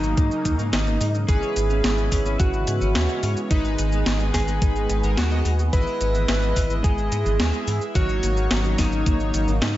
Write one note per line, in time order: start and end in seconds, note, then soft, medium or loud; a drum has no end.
0.00 0.14 G#1 loud
0.00 1.26 C#3 medium
0.00 0.14 D#3 loud
0.00 1.26 F#3 medium
0.00 1.26 A#3 medium
0.00 0.62 D#4 loud
0.00 1.26 D#4 loud
0.00 shaker soft
0.17 0.30 G#2 medium
0.17 0.28 A#3 medium
0.17 kick loud
0.17 closed hi-hat loud
0.17 shaker soft
0.31 shaker soft
0.45 0.58 D#2 medium
0.45 0.52 D#3 medium
0.45 kick medium
0.45 closed hi-hat medium
0.45 shaker medium
0.59 0.71 G#2 medium
0.59 0.66 A#3 medium
0.59 shaker soft
0.73 0.98 G#1 medium
0.73 0.83 D#3 medium
0.73 1.16 D#4 medium
0.73 snare loud
0.73 closed hi-hat loud
0.73 shaker soft
0.87 0.97 A#3 medium
0.87 shaker soft
1.01 1.25 G#2 loud
1.01 1.08 D#4 medium
1.01 open hi-hat medium
1.01 shaker medium
1.15 1.19 D#3 medium
1.15 shaker soft
1.28 1.41 G#1 loud
1.28 3.49 C#3 medium
1.28 2.92 E3 medium
1.28 5.69 G#3 medium
1.28 7.91 B3 medium
1.28 1.39 C#4 medium
1.28 2.92 C#4 medium
1.28 3.49 E4 loud
1.28 2.29 G#4 loud
1.28 2.92 B4 loud
1.28 kick loud
1.28 closed hi-hat loud
1.28 shaker soft
1.42 1.49 C#5 medium
1.42 shaker soft
1.56 1.81 G#1 loud
1.56 1.60 G#4 medium
1.56 closed hi-hat medium
1.56 shaker medium
1.70 1.77 C#4 loud
1.70 shaker soft
1.84 2.09 G#1 medium
1.84 snare loud
1.84 closed hi-hat loud
1.84 shaker soft
1.98 2.05 C#4 medium
1.98 shaker soft
2.12 2.37 G#1 loud
2.12 2.22 C#4 medium
2.12 kick medium
2.12 open hi-hat medium
2.12 shaker medium
2.26 2.36 C#4 loud
2.26 shaker soft
2.40 2.64 G#1 medium
2.40 3.40 F#4 loud
2.40 2.50 G#4 medium
2.40 kick loud
2.40 closed hi-hat loud
2.40 shaker soft
2.54 shaker soft
2.67 2.80 G#2 medium
2.67 2.72 G#4 medium
2.67 closed hi-hat medium
2.67 shaker medium
2.81 2.94 G#1 loud
2.81 2.88 C#4 loud
2.81 shaker soft
2.95 3.08 D#2 medium
2.95 3.47 E3 medium
2.95 3.47 C#4 medium
2.95 3.02 E4 medium
2.95 3.47 C#5 medium
2.95 snare loud
2.95 closed hi-hat loud
2.95 shaker soft
3.09 3.20 E4 loud
3.09 shaker soft
3.23 3.35 G#2 medium
3.23 3.33 C#4 medium
3.23 open hi-hat medium
3.23 shaker medium
3.37 shaker soft
3.51 3.75 G#1 medium
3.51 5.71 D#3 medium
3.51 3.61 G#3 medium
3.51 5.00 G#3 loud
3.51 4.23 D#4 medium
3.51 5.00 D#4 medium
3.51 4.23 D#4 loud
3.51 5.71 G#4 loud
3.51 5.00 B4 loud
3.51 kick loud
3.51 closed hi-hat loud
3.51 shaker soft
3.65 3.72 G#4 medium
3.65 shaker soft
3.79 4.03 G#1 medium
3.79 3.83 D#4 medium
3.79 closed hi-hat medium
3.79 shaker medium
3.92 3.99 G#3 loud
3.92 shaker soft
4.06 4.31 G#1 medium
4.06 snare loud
4.06 closed hi-hat loud
4.06 shaker soft
4.20 4.27 G#3 medium
4.20 shaker soft
4.34 4.59 G#1 loud
4.34 4.45 G#3 medium
4.34 5.06 G#4 loud
4.34 kick medium
4.34 snare medium
4.34 open hi-hat medium
4.34 shaker medium
4.48 4.58 G#3 loud
4.48 shaker soft
4.62 4.87 G#1 loud
4.62 4.72 D#4 medium
4.62 kick loud
4.62 closed hi-hat loud
4.62 shaker soft
4.76 shaker soft
4.90 5.02 G#1 loud
4.90 4.94 D#4 medium
4.90 closed hi-hat medium
4.90 shaker medium
5.03 5.16 G#1 loud
5.03 5.28 G#3 medium
5.03 5.11 G#3 loud
5.03 5.28 D#4 medium
5.03 5.28 A#4 medium
5.03 shaker soft
5.17 5.42 D#2 loud
5.17 5.24 B3 medium
5.17 5.61 F#4 medium
5.17 snare loud
5.17 closed hi-hat loud
5.17 shaker soft
5.31 5.39 G#3 loud
5.31 5.42 B3 loud
5.31 5.38 D#4 medium
5.31 5.38 D#5 loud
5.31 shaker soft
5.45 5.70 D#2 medium
5.45 5.56 G#3 medium
5.45 open hi-hat medium
5.45 shaker medium
5.59 shaker soft
5.73 5.85 G#1 loud
5.73 5.83 E3 medium
5.73 7.36 G#3 medium
5.73 7.93 G#3 medium
5.73 7.36 E4 medium
5.73 7.93 E4 loud
5.73 6.73 B4 loud
5.73 7.36 D#5 loud
5.73 kick loud
5.73 closed hi-hat medium
5.73 shaker soft
5.87 5.94 E4 medium
5.87 shaker soft
6.01 6.26 G#1 loud
6.01 6.05 B3 medium
6.01 closed hi-hat medium
6.01 shaker medium
6.15 6.22 E3 loud
6.15 shaker soft
6.28 6.53 G#1 medium
6.28 snare loud
6.28 closed hi-hat loud
6.28 shaker soft
6.42 6.49 E3 medium
6.42 shaker soft
6.56 6.81 G#1 loud
6.56 6.67 E3 medium
6.56 kick medium
6.56 open hi-hat medium
6.56 shaker medium
6.70 6.81 E3 loud
6.70 shaker soft
6.84 7.09 G#1 medium
6.84 6.95 B3 medium
6.84 7.84 G#4 medium
6.84 7.84 G#4 loud
6.84 kick loud
6.84 closed hi-hat loud
6.84 shaker soft
6.98 shaker soft
7.12 7.24 G#2 medium
7.12 7.16 B3 medium
7.12 closed hi-hat medium
7.12 shaker medium
7.26 7.38 G#1 loud
7.26 7.33 E3 loud
7.26 shaker soft
7.40 7.52 D#2 medium
7.40 7.92 G#3 medium
7.40 7.47 G#3 medium
7.40 7.92 E4 medium
7.40 7.92 E5 medium
7.40 snare loud
7.40 closed hi-hat loud
7.40 shaker soft
7.54 7.64 G#3 loud
7.54 shaker soft
7.67 7.80 G#2 medium
7.67 7.78 E3 medium
7.67 open hi-hat medium
7.67 shaker medium
7.81 shaker soft
7.95 8.20 G#1 medium
7.95 9.77 C#3 medium
7.95 8.06 D#3 medium
7.95 9.45 F#3 loud
7.95 9.77 F#3 medium
7.95 9.77 A#3 medium
7.95 9.45 D#4 medium
7.95 9.77 D#4 loud
7.95 8.68 F#4 loud
7.95 8.68 F#4 medium
7.95 9.45 C#5 loud
7.95 kick loud
7.95 closed hi-hat medium
7.95 shaker soft
8.09 8.16 D#4 medium
8.09 shaker soft
8.23 8.48 G#1 medium
8.23 8.27 A#3 medium
8.23 closed hi-hat medium
8.23 shaker medium
8.37 8.44 D#3 loud
8.37 shaker soft
8.51 8.76 G#1 medium
8.51 snare loud
8.51 closed hi-hat loud
8.51 shaker soft
8.65 8.72 D#3 medium
8.65 shaker soft
8.78 9.03 G#1 loud
8.78 8.89 D#3 medium
8.78 9.51 D#4 loud
8.78 kick medium
8.78 snare medium
8.78 open hi-hat medium
8.78 shaker medium
8.92 9.03 D#3 loud
8.92 shaker soft
9.06 9.31 G#1 loud
9.06 9.17 A#3 medium
9.06 kick loud
9.06 closed hi-hat medium
9.06 shaker soft
9.20 shaker soft
9.34 9.46 G#1 medium
9.34 9.41 D#3 medium
9.34 closed hi-hat medium
9.34 shaker medium
9.48 9.60 G#1 loud
9.48 9.55 A#3 medium
9.48 shaker soft
9.62 9.77 G#2 medium
9.62 9.66 A#3 loud
9.62 9.77 D#4 medium
9.62 snare loud
9.62 closed hi-hat medium
9.62 shaker soft